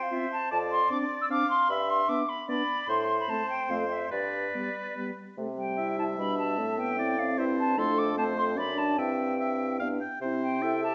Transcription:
Already playing: oboe C5
0.03 flute F5
0.11 french horn C4, clarinet F4, flute E5
0.32 flute A5
0.51 bassoon F2, oboe D5, flute A5
0.71 flute C6
0.90 french horn C4, clarinet D4, flute D6
1.21 flute E6
1.29 french horn C4, clarinet D4, oboe F5, flute D6
1.50 flute C6
1.69 bassoon G2, oboe E5, flute B5
1.90 flute C6
2.09 french horn B3, clarinet D4, flute D6
2.29 flute B5
2.49 french horn B3, clarinet D4, oboe D5, flute B5
2.88 bassoon A2, oboe C5, flute C6
3.20 flute B5
3.29 french horn A3, clarinet C4, flute A5
3.49 flute G5
3.69 bassoon F2, french horn A3, clarinet C4, flute F5
3.90 flute E5
4.11 bassoon G2, oboe B4, flute D5
4.54 french horn G3, clarinet B3
4.96 french horn G3, clarinet B3
5.38 bassoon C3, french horn A3, clarinet C4
5.58 french horn G3, flute G5
5.78 clarinet E4, oboe E5
5.98 clarinet E4, flute A5
6.18 bassoon B2, french horn G3, clarinet D4, flute B5
6.38 flute A5
6.58 bassoon A2, french horn A3, clarinet C4
6.78 french horn B3, flute G5
6.98 french horn C4, clarinet E4, oboe D5
7.18 french horn C4, flute F5
7.38 bassoon G2, clarinet E4, oboe C5, flute E5
7.59 flute A5
7.77 bassoon F2, french horn A3, clarinet D4, oboe A4, flute C6
7.98 flute D6
8.17 french horn A3, clarinet C4, oboe C5, flute A5
8.38 flute C6
8.57 bassoon F#2, french horn D4, clarinet D4, oboe D5, flute B5
8.78 flute A5
8.97 bassoon G2, french horn C4, clarinet E4, oboe E5, flute G5
9.40 oboe E5
9.80 bassoon G2, french horn B3, clarinet D4, oboe F5
10.01 oboe G5
10.21 bassoon C3, french horn C4, clarinet E4, oboe C5
10.42 flute G5
10.62 french horn E4, clarinet A4, oboe E5
10.83 clarinet G4, flute A5

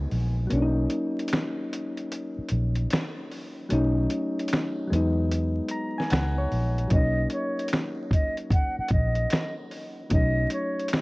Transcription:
Already playing: synth keys F#3 G#3 B3 D#4
0.11 fingered electric bass A#1, open hi-hat
0.47 synth keys F#3 A#3, closed hi-hat
0.52 fingered electric bass B1, synth keys C#4 D4
0.62 synth keys D#4
0.90 closed hi-hat
1.19 closed hi-hat
1.28 closed hi-hat
1.33 finger snap, snare
1.73 closed hi-hat
1.97 closed hi-hat
2.12 closed hi-hat
2.39 muted fingered electric bass stroke
2.49 fingered electric bass A#1, closed hi-hat
2.76 closed hi-hat
2.90 finger snap, snare, closed hi-hat
3.31 open hi-hat
3.69 fingered electric bass B1, synth keys F#3 A3 C#4, closed hi-hat
3.73 synth keys D#4
4.10 closed hi-hat
4.39 closed hi-hat
4.48 closed hi-hat
4.53 finger snap, snare
4.87 synth keys F#3 G#3
4.92 fingered electric bass E2, synth keys B3 D#4, closed hi-hat
5.32 closed hi-hat
5.68 synth keys A#5, closed hi-hat
5.98 synth keys G#5, snare
6.10 fingered electric bass C#2, synth keys F#5, finger snap, snare, closed hi-hat
6.38 synth keys C#5
6.52 fingered electric bass A#1, open hi-hat
6.78 closed hi-hat
6.88 synth keys F#3 A#3, kick, closed hi-hat
6.92 fingered electric bass B1, synth keys C#4 D#4, flute D#5
7.30 flute C#5, closed hi-hat
7.59 closed hi-hat
7.68 closed hi-hat
7.73 finger snap, snare
8.11 flute D#5, kick, closed hi-hat
8.37 closed hi-hat
8.50 flute F#5, kick, closed hi-hat
8.79 flute F#5, muted fingered electric bass stroke
8.88 fingered electric bass A#1, kick, closed hi-hat
8.93 flute D#5
9.15 closed hi-hat
9.30 finger snap, snare, closed hi-hat
9.71 open hi-hat
10.09 fingered electric bass B1, synth keys F#3 A3 C#4, flute D#5, kick, closed hi-hat
10.14 synth keys D#4
10.50 flute C#5, closed hi-hat
10.79 closed hi-hat
10.88 closed hi-hat
10.93 finger snap, snare

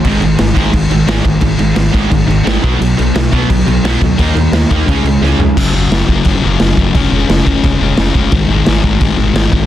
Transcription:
0.05 fm bass G#1, distorted electric guitar G#2 D#3 G#3, kick, crash
0.22 fm bass G#1, distorted electric guitar G#2 D#3, crash
0.39 fm bass G#1, distorted electric guitar G#2 D#3, snare, crash
0.56 fm bass G#1, distorted electric guitar G#2 D#3 G#3, kick, crash
0.73 fm bass G#1, distorted electric guitar G#2 D#3, kick, crash
0.90 fm bass G#1, distorted electric guitar G#2 D#3, crash
1.06 fm bass G#1, distorted electric guitar G#2 D#3 G#3, snare, crash
1.23 fm bass G#1, distorted electric guitar G#2 D#3, kick, crash
1.41 fm bass G#1, distorted electric guitar G#2 D#3, kick, crash
1.58 fm bass G#1, distorted electric guitar G#2 D#3, crash
1.76 fm bass G#1, distorted electric guitar G#2 D#3, snare, crash
1.93 fm bass G#1, distorted electric guitar G#2 D#3 G#3, kick, crash
2.10 fm bass G#1, distorted electric guitar G#2 D#3, kick, crash
2.27 fm bass G#1, distorted electric guitar G#2 D#3, crash
2.44 fm bass G#1, distorted electric guitar G#2 D#3 G#3, snare, crash
2.62 fm bass B1, distorted electric guitar B2 F#3 B3, kick, crash
2.79 fm bass B1, distorted electric guitar B2 F#3, crash
2.97 fm bass B1, distorted electric guitar B2 F#3, crash
3.15 fm bass B1, distorted electric guitar B2 F#3, snare, crash
3.32 fm bass B1, distorted electric guitar B2 F#3 B3, kick, crash
3.49 fm bass B1, distorted electric guitar B2 F#3, kick, crash
3.67 fm bass B1, distorted electric guitar B2 F#3, crash
3.84 fm bass B1, distorted electric guitar B2 F#3 B3, snare, crash
4.01 fm bass D2, distorted electric guitar B2 F#3, kick, crash
4.17 fm bass D#2, distorted electric guitar D#3 A#3 D#4, kick, crash
4.35 fm bass D#2, distorted electric guitar D#3 A#3, crash
4.52 fm bass D#2, distorted electric guitar D#3 A#3, snare, crash
4.70 fm bass D#2, distorted electric guitar D#3 A#3 D#4, kick, crash
4.86 fm bass C#2, distorted electric guitar C#3 G#3 C#4, kick, crash
5.03 fm bass C#2, distorted electric guitar C#3 G#3, crash
5.21 fm bass C#2, distorted electric guitar C#3 G#3 C#4, snare
5.38 fm bass C#2, distorted electric guitar C#3 G#3, floor tom
5.56 fm bass F#1, distorted electric guitar F#2 C#3 F#3, kick, crash
5.72 fm bass F#1, distorted electric guitar F#2 C#3 F#3
5.90 fm bass F#1, distorted electric guitar F#2 C#3 F#3, snare, crash
6.08 fm bass F#1, distorted electric guitar F#2 C#3 F#3, kick
6.25 fm bass F#1, distorted electric guitar F#2 C#3 F#3, kick, crash
6.44 fm bass F#1, distorted electric guitar F#2 C#3 F#3
6.59 fm bass F#1, distorted electric guitar F#2 C#3 F#3, snare, crash
6.77 fm bass F#1, distorted electric guitar F#2 C#3 F#3, kick
6.95 fm bass F1, distorted electric guitar C#3 G#3 C#4, kick, crash
7.11 fm bass F1, distorted electric guitar C#3 G#3 C#4
7.29 fm bass F1, distorted electric guitar C#3 G#3 C#4, snare, crash
7.46 fm bass F1, distorted electric guitar C#3 G#3 C#4, kick
7.64 fm bass F1, distorted electric guitar C#3 G#3 C#4, kick, crash
7.80 fm bass F1, distorted electric guitar C#3 G#3 C#4
7.97 fm bass F1, distorted electric guitar C#3 G#3 C#4, snare, crash
8.15 fm bass F1, distorted electric guitar C#3 G#3 C#4, kick
8.32 fm bass G#1, distorted electric guitar G#2 D#3 G#3, kick, crash
8.49 fm bass G#1, distorted electric guitar G#2 D#3 G#3
8.66 fm bass G#1, distorted electric guitar G#2 D#3 G#3, snare, crash
8.84 fm bass G#1, distorted electric guitar G#2 D#3 G#3, kick
9.00 fm bass G#1, distorted electric guitar G#2 D#3 G#3, kick, crash
9.17 fm bass G#1, distorted electric guitar G#2 D#3 G#3
9.34 fm bass G#1, distorted electric guitar G#2 D#3 G#3, snare, crash
9.52 fm bass G#1, distorted electric guitar G#2 D#3 G#3, kick

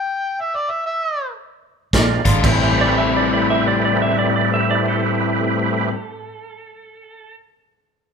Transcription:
Already playing: harmonica G5
0.40 harmonica E5
0.56 harmonica D5
0.70 harmonica E5
0.86 harmonica E5
1.93 fingered electric bass A#1, tonewheel organ G#3 C4 D4 F4 A#4, electric slide guitar D5, kick, snare, closed hi-hat
2.25 fingered electric bass G#1, overdriven electric guitar A#2 G#3 D4 F4, kick, closed hi-hat
2.42 fingered electric bass A1, overdriven electric guitar A2 G3 C4 E4, tonewheel organ A3 C4 E4 G4 B4, kick, crash
2.81 electric slide guitar D5
2.98 electric slide guitar E5
3.17 electric slide guitar D5
3.33 electric slide guitar D5
3.50 electric slide guitar E5
3.68 electric slide guitar D5
3.85 electric slide guitar D5
4.02 electric slide guitar E5
4.19 electric slide guitar D5
4.36 electric slide guitar D5
4.54 electric slide guitar E5
4.71 electric slide guitar D5
4.88 electric slide guitar A4

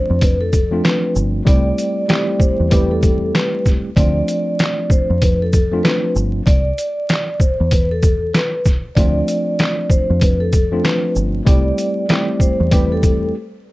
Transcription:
Already playing: tine electric piano F3 A3 C4 D4 F4, vibraphone C5
0.10 fingered electric bass F2
0.21 vibraphone B4, kick, closed hi-hat
0.41 vibraphone A4
0.53 vibraphone A4, kick, closed hi-hat, shaker
0.72 tine electric piano F3 A3 C4 D4 F4
0.84 vibraphone B4, snare, clap, closed hi-hat
1.16 fingered electric bass G1, shaker
1.45 fingered electric bass C2, tine electric piano G3 A3 C4 E4 G4, vibraphone D5, kick, closed hi-hat
1.78 closed hi-hat, shaker
2.08 tine electric piano G3 A3 C4 E4 G4, snare, clap, closed hi-hat
2.40 vibraphone C5, kick, shaker
2.60 fingered electric bass E2
2.70 tine electric piano G3 A3 C4 E4 G4, vibraphone B4, kick, closed hi-hat
2.91 vibraphone A4
3.01 vibraphone A4, kick, closed hi-hat, shaker
3.35 vibraphone B4, snare, clap, closed hi-hat
3.66 kick, snare, shaker
3.96 fingered electric bass D2, tine electric piano F3 A3 C4 D4 F4, vibraphone D5, kick, closed hi-hat
4.28 closed hi-hat, shaker
4.59 snare, clap, closed hi-hat
4.90 vibraphone C5, kick, shaker
5.10 fingered electric bass F2
5.22 vibraphone B4, kick, closed hi-hat
5.42 vibraphone A4
5.53 vibraphone A4, kick, closed hi-hat, shaker
5.72 tine electric piano F3 A3 C4 D4 F4
5.83 vibraphone B4, snare, clap, closed hi-hat
6.16 fingered electric bass G1, shaker
6.46 fingered electric bass C2, vibraphone D5, kick, closed hi-hat
6.78 closed hi-hat, shaker
7.09 snare, clap, closed hi-hat
7.40 vibraphone C5, kick, shaker
7.60 fingered electric bass E2
7.71 vibraphone B4, kick, closed hi-hat
7.91 vibraphone A4
8.03 vibraphone A4, kick, closed hi-hat, shaker
8.34 vibraphone B4, snare, clap, closed hi-hat
8.65 kick, snare, shaker
8.95 fingered electric bass D2, tine electric piano F3 A3 C4 D4, vibraphone D5, kick, closed hi-hat
8.99 tine electric piano F4
9.28 closed hi-hat, shaker
9.59 snare, clap, closed hi-hat
9.90 vibraphone C5, kick, shaker
10.10 fingered electric bass F2
10.21 vibraphone B4, kick, closed hi-hat
10.40 vibraphone A4
10.53 vibraphone A4, kick, closed hi-hat, shaker
10.72 tine electric piano F3 A3 C4 D4 F4
10.84 vibraphone B4, snare, clap, closed hi-hat
11.16 fingered electric bass G1, shaker
11.45 fingered electric bass C2, tine electric piano G3 A3 C4 E4 G4, vibraphone D5, kick, closed hi-hat
11.78 closed hi-hat, shaker
12.09 tine electric piano G3 A3 C4 E4 G4, snare, clap, closed hi-hat
12.40 vibraphone C5, kick, shaker
12.60 fingered electric bass E2
12.71 tine electric piano G3 A3 C4 E4 G4, vibraphone B4, kick, closed hi-hat
12.92 vibraphone A4
13.02 vibraphone A4, kick, closed hi-hat, shaker

